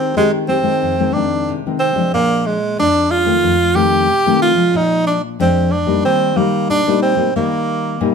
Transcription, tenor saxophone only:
0.00 0.16 C4 medium
0.17 0.32 G#3 medium
0.49 1.15 C4 loud
1.13 1.53 D4 medium
1.79 2.10 C4 medium
2.14 2.47 A#3 loud
2.46 2.79 G#3 medium
2.80 3.12 D4 medium
3.11 3.77 F4 loud
3.76 4.42 G4 loud
4.42 4.78 F4 medium
4.76 5.06 D#4 loud
5.07 5.22 D4 medium
5.41 5.73 C4 medium
5.71 6.05 D4 medium
6.05 6.38 C4 loud
6.37 6.70 A#3 medium
6.70 7.01 D4 medium
7.02 7.33 C4 medium
7.36 8.15 A#3 medium

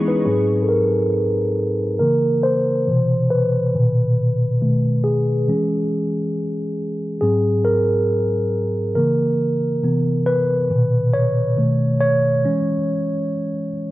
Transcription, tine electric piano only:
0.00 0.28 E3 medium
0.00 0.28 G#3 medium
0.00 0.28 B3 medium
0.00 0.28 C#4 medium
0.00 0.09 D#4 medium
0.00 0.28 E4 medium
0.00 0.25 G#4 medium
0.08 0.50 D#4 medium
0.08 0.49 B4 medium
0.25 1.52 G#2 soft
0.25 1.53 F#3 soft
0.25 1.53 C4 medium
0.25 0.65 G#4 medium
0.63 0.69 A4 medium
0.69 1.98 A#4 medium
2.00 2.83 C#3 soft
2.00 2.83 E3 soft
2.00 2.84 A#3 medium
2.00 2.45 A#4 medium
2.43 3.33 C5 medium
2.87 3.71 B2 medium
2.87 3.70 C3 soft
2.87 3.70 E3 soft
3.30 5.10 B4 medium
3.74 4.58 A#2 medium
3.74 4.57 B2 soft
3.74 4.57 D#3 soft
4.61 5.44 B2 soft
4.61 5.44 D#3 soft
4.61 5.44 A3 medium
5.04 5.87 G#4 medium
5.48 7.18 E3 medium
5.48 7.18 G#3 soft
5.48 7.18 C#4 medium
7.21 8.92 G#2 soft
7.21 8.92 F#3 soft
7.21 8.92 C4 medium
7.21 7.66 G#4 medium
7.65 8.48 A#4 medium
8.95 9.56 C#3 soft
8.95 9.57 E3 soft
8.95 9.57 A#3 medium
8.95 10.22 A#4 medium
9.83 10.66 C3 soft
9.83 10.66 E3 soft
9.83 10.66 B3 medium
10.26 11.16 B4 medium
10.70 11.53 A#2 medium
10.70 11.53 B2 medium
10.70 11.53 D#3 soft
11.13 11.96 C#5 medium
11.57 12.40 B2 soft
11.57 12.40 D#3 soft
11.57 12.40 A3 medium
12.00 13.70 C#5 medium
12.44 13.70 E3 soft
12.44 13.71 G#3 soft
12.44 13.71 C#4 medium

